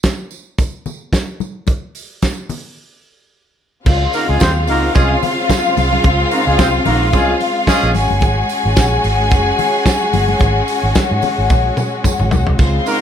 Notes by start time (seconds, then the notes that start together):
0.03 kick, snare, closed hi-hat, tambourine, high conga
0.31 tambourine
0.58 kick, closed hi-hat, tambourine, muted conga
0.86 tambourine, muted conga, low conga
1.13 kick, snare, closed hi-hat, tambourine, high conga
1.40 tambourine, high conga
1.67 kick, closed hi-hat, tambourine, muted conga
1.95 open hi-hat, tambourine
2.22 kick, snare, closed hi-hat, tambourine, high conga
2.49 open hi-hat, tambourine, low conga
3.85 C#2 C#3 G#3 C4 F4 F5, kick, crash, muted conga
4.13 A#3 D#4 F#4 A#4, open hi-hat, tambourine
4.29 C#2 G#3 C#4 F4 G#4
4.40 D#2 C4 F4 G#4 C5, kick, snare, closed hi-hat, tambourine, high conga
4.67 C#2 A#3 D#4 F#4 A#4, open hi-hat, tambourine
4.95 C2 G#3 C#4 F4 G#4, kick, closed hi-hat, tambourine, muted conga
5.23 open hi-hat, tambourine, low conga
5.50 kick, snare, closed hi-hat, tambourine, high conga
5.77 C2, open hi-hat, tambourine, high conga
5.93 high conga
6.04 C#2, kick, closed hi-hat, muted conga
6.31 A#3 D#4 F#4 A#4, open hi-hat, tambourine
6.46 C#2 G#3 C#4 F4 G#4
6.59 C2 C4 F4 G#4 C5, kick, snare, closed hi-hat, tambourine, high conga
6.86 A#1 A#3 D#4 F#4 A#4, open hi-hat, tambourine, low conga
7.13 C2 G#3 C#4 F4 G#4, kick, closed hi-hat, tambourine, muted conga
7.41 open hi-hat, tambourine, muted conga
7.67 G#3 C#4 F4 G#4, kick, snare, closed hi-hat, tambourine, high conga
7.83 A#1
7.94 G#1 C#4 F#4 G#4 G#5, open hi-hat, tambourine, high conga
8.10 G1, high conga
8.21 G#1, kick, closed hi-hat, tambourine, muted conga
8.49 open hi-hat, tambourine
8.65 G#1
8.76 A#1, kick, snare, closed hi-hat, tambourine, high conga
9.04 G#1, open hi-hat, tambourine
9.31 F#1, kick, closed hi-hat, tambourine, muted conga
9.59 open hi-hat, tambourine, low conga
9.86 kick, snare, closed hi-hat, tambourine, high conga
10.13 G1, open hi-hat, tambourine, high conga
10.28 high conga
10.40 G#1, kick, closed hi-hat, tambourine, muted conga
10.68 open hi-hat, tambourine
10.83 G#1
10.95 kick, snare, closed hi-hat, tambourine, high conga
11.11 G#2
11.22 open hi-hat, tambourine, low conga
11.38 G#1
11.50 A#1, kick, high tom, tambourine, muted conga
11.77 mid tom, tambourine, muted conga
12.04 kick, mid tom, tambourine, high conga
12.20 G#1, mid tom
12.31 B1, floor tom, tambourine, high conga
12.47 C2, floor tom
12.59 C#2 C#3 C4 F4 C5 C6, kick, tambourine, splash, muted conga
12.86 A#3 D#4 F#4 A#4, open hi-hat, tambourine